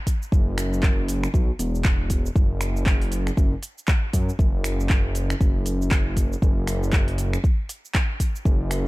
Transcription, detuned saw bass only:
0.32 F#1
1.34 B1
1.59 E1
2.35 F#1
3.37 F#1
4.13 F#2
4.39 F#1
5.41 F#1
6.42 F#1
8.45 F#1

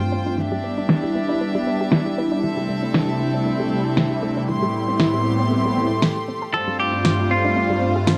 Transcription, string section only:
Already playing: F4 C5 G5
0.38 D4 G4 E5
2.43 C4 A4
4.48 A3 G4 C6
6.54 G3 F4 C5

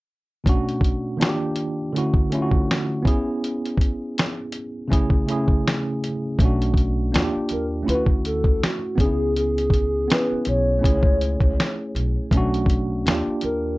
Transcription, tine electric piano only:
0.44 B2 A3 C#4 D4
0.49 F#4
1.17 D#3 A#3 D4
1.21 F4 F#4
1.29 G4
1.93 D3 A3 C#4
1.97 E4 F#4
2.30 D3 A3 C#4
2.35 E4 F4
2.42 F#4
3.03 B3 C#4 E4
3.08 G#4
4.88 C#3 A3 C#4
4.92 E4 G#4
5.26 C#3 A3 C#4 E4
5.32 G#4
6.40 A3 C#4 D4
6.45 F#4
7.12 A#3 D4 F4
7.18 F#4
7.24 G4
7.83 A3 C#4 E4
7.88 F4
7.95 F#4
8.95 B3 C#4 D4
9.01 G#4
9.06 E4
10.08 B3 C#4 E4
10.13 G#4
10.79 A3 C#4 E4
10.84 G#4
12.32 A3 C#4 D4
12.37 F#4
13.06 A#3 D4 F4
13.11 G4

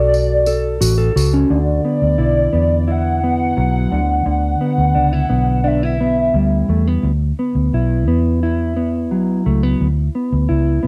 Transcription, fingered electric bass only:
Already playing: B1
0.81 A1
1.16 C#2
1.50 D2
2.02 D2
2.18 B1
2.53 E2
3.57 B1
3.92 D2
4.26 D2
4.78 D2
4.96 C#2
5.30 B1
6.34 D2
6.69 E2
7.03 D2
7.55 D2
7.73 B1
8.07 E2
9.11 B1
9.46 C#2
9.80 D2
10.32 D2
10.50 C#2
10.84 B1

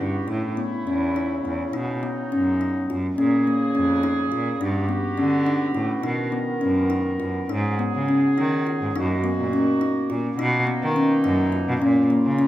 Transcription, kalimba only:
0.00 E4
0.28 E4
0.57 B3
0.87 C#4
1.16 D#4
1.45 E4
1.73 D#4
2.03 B3
2.32 C#4
2.61 D#4
2.90 F4
3.18 C#4
3.47 A#3
3.75 C#4
4.03 D#4
4.32 F4
4.61 D4
4.89 B3
5.18 C#4
5.46 D4
5.74 E4
6.03 D#4
6.32 B3
6.61 C#4
6.90 D#4
7.20 F4
7.49 D#4
7.79 B3
8.08 C#4
8.38 D#4
8.67 F4
8.96 D#4
9.24 B3
9.53 C#4
9.81 D#4
10.10 F4
10.39 D#4
10.67 B3
10.96 C#4
11.24 D#4
11.52 F4
11.82 C#4
12.10 A#3
12.39 C#4

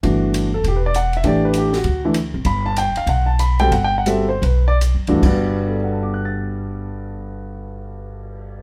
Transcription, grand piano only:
0.03 E3 A3 D4 F#4
0.54 A4
0.68 G4
0.76 B4
0.86 D5
0.96 F#5
1.17 E5
1.24 E3 A3 D4 G4 D5
1.45 B4
1.58 G4
1.76 F#4
2.05 E3 A3 D4 E4
2.46 B5
2.66 A5
2.78 G5
2.97 F5
3.09 F#5
3.26 A5
3.40 B5
3.60 G3 C4 F#4 A4 G5
3.73 F#5
3.84 G5
3.98 F#5
4.06 G3 C4 F#4 A4 E5
4.29 C5
4.44 B4
4.68 D5
5.08 G2 E3 A3 D4 F#4
5.23 G2 G3 B3 F#4 D5
5.68 A4
5.76 D5
5.84 F#5
5.93 A5
6.03 D6
6.14 F#6
6.25 A6

